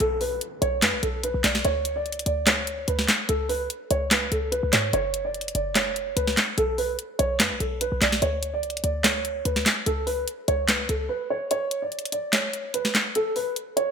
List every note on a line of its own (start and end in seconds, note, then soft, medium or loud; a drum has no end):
0.00 0.40 B1 loud
0.00 0.64 C#4 medium
0.00 0.27 F4 medium
0.00 0.17 A4 loud
0.00 closed hi-hat medium
0.00 downlifter medium
0.21 0.38 B4 medium
0.21 open hi-hat medium
0.41 closed hi-hat medium
0.62 0.84 B1 loud
0.62 0.79 C#5 medium
0.62 closed hi-hat medium
0.82 0.95 F#2 loud
0.82 0.99 B4 medium
0.82 snare loud
0.82 clap medium
0.82 closed hi-hat medium
0.93 1.02 B1 loud
1.03 1.33 B1 loud
1.03 1.20 A4 medium
1.03 closed hi-hat medium
1.23 1.41 B4 medium
1.23 closed hi-hat medium
1.34 1.44 B1 loud
1.44 1.64 B1 loud
1.44 1.61 D5 medium
1.44 snare loud
1.44 clap medium
1.44 closed hi-hat medium
1.55 snare medium
1.65 2.07 D2 loud
1.65 1.94 C#5 loud
1.65 closed hi-hat medium
1.85 closed hi-hat medium
1.96 2.24 D5 medium
2.06 2.25 C#2 loud
2.06 closed hi-hat soft
2.12 closed hi-hat medium
2.19 closed hi-hat medium
2.26 2.85 D2 loud
2.26 2.43 D5 medium
2.26 closed hi-hat medium
2.47 2.85 C#5 medium
2.47 snare loud
2.47 clap medium
2.47 closed hi-hat medium
2.67 closed hi-hat medium
2.88 3.08 D2 loud
2.88 3.05 B4 medium
2.88 closed hi-hat medium
2.99 snare medium
3.08 snare medium
3.08 clap medium
3.29 3.68 C#2 loud
3.29 3.46 A4 loud
3.29 closed hi-hat medium
3.49 3.66 B4 medium
3.49 open hi-hat medium
3.70 closed hi-hat medium
3.91 4.30 C#2 loud
3.91 4.08 C#5 medium
3.91 closed hi-hat medium
4.11 4.28 B4 medium
4.11 snare loud
4.11 clap medium
4.11 closed hi-hat medium
4.32 4.62 C#2 loud
4.32 4.49 A4 medium
4.32 closed hi-hat medium
4.52 4.69 B4 medium
4.52 closed hi-hat medium
4.63 4.72 C#2 loud
4.73 4.93 G#2 loud
4.73 4.90 C#5 medium
4.73 snare loud
4.73 clap medium
4.73 closed hi-hat medium
4.93 5.52 F#1 loud
4.93 5.23 C#5 loud
4.93 closed hi-hat medium
5.14 closed hi-hat medium
5.25 5.53 D5 medium
5.34 closed hi-hat soft
5.41 closed hi-hat medium
5.48 closed hi-hat medium
5.55 6.14 F#1 loud
5.55 5.72 D5 medium
5.55 closed hi-hat medium
5.75 6.14 C#5 medium
5.75 snare loud
5.75 clap medium
5.75 closed hi-hat medium
5.96 closed hi-hat medium
6.16 6.36 C#2 loud
6.16 6.33 B4 medium
6.16 closed hi-hat medium
6.27 snare medium
6.37 snare loud
6.37 clap medium
6.58 6.97 B1 loud
6.58 6.75 A4 loud
6.58 closed hi-hat medium
6.78 6.95 B4 medium
6.78 open hi-hat medium
6.99 closed hi-hat medium
7.19 7.41 B1 loud
7.19 7.36 C#5 loud
7.19 closed hi-hat medium
7.40 7.52 F#2 loud
7.40 7.57 B4 medium
7.40 snare loud
7.40 clap medium
7.40 closed hi-hat medium
7.51 7.60 B1 loud
7.60 7.91 B1 loud
7.60 7.77 A4 medium
7.60 closed hi-hat medium
7.81 7.98 B4 medium
7.81 closed hi-hat medium
7.92 8.01 B1 loud
8.02 8.21 B1 loud
8.02 8.19 D5 medium
8.02 snare medium
8.02 clap medium
8.02 closed hi-hat medium
8.12 snare medium
8.22 8.65 D2 loud
8.22 8.52 C#5 loud
8.22 closed hi-hat medium
8.43 closed hi-hat medium
8.54 8.82 D5 medium
8.63 8.83 C#2 loud
8.63 closed hi-hat soft
8.70 closed hi-hat medium
8.77 closed hi-hat medium
8.84 9.43 D2 loud
8.84 9.01 D5 medium
8.84 closed hi-hat medium
9.04 9.43 C#5 medium
9.04 snare loud
9.04 clap medium
9.04 closed hi-hat medium
9.25 closed hi-hat medium
9.45 9.65 D2 loud
9.45 9.62 B4 medium
9.45 closed hi-hat medium
9.56 snare medium
9.66 snare loud
9.66 clap medium
9.86 10.26 C#2 loud
9.86 10.03 A4 loud
9.86 closed hi-hat medium
10.07 10.24 B4 loud
10.07 open hi-hat medium
10.28 closed hi-hat medium
10.48 10.88 C#2 loud
10.48 10.65 C#5 medium
10.48 closed hi-hat medium
10.68 10.86 B4 medium
10.68 snare loud
10.68 clap medium
10.68 closed hi-hat medium
10.89 11.09 C#2 loud
10.89 11.06 A4 medium
10.89 closed hi-hat medium
11.09 11.26 B4 medium
11.30 11.47 C#5 medium
11.51 11.81 C#5 loud
11.51 closed hi-hat medium
11.71 closed hi-hat medium
11.82 12.11 D5 medium
11.92 closed hi-hat soft
11.99 closed hi-hat medium
12.05 closed hi-hat medium
12.12 12.29 D5 medium
12.12 closed hi-hat medium
12.33 12.72 C#5 medium
12.33 snare loud
12.33 clap medium
12.33 closed hi-hat medium
12.53 closed hi-hat medium
12.74 12.91 B4 medium
12.74 closed hi-hat medium
12.85 snare medium
12.95 snare loud
12.95 clap medium
13.15 13.32 A4 loud
13.15 closed hi-hat medium
13.36 13.53 B4 medium
13.36 open hi-hat medium
13.56 closed hi-hat medium
13.77 13.91 C#5 loud
13.77 closed hi-hat medium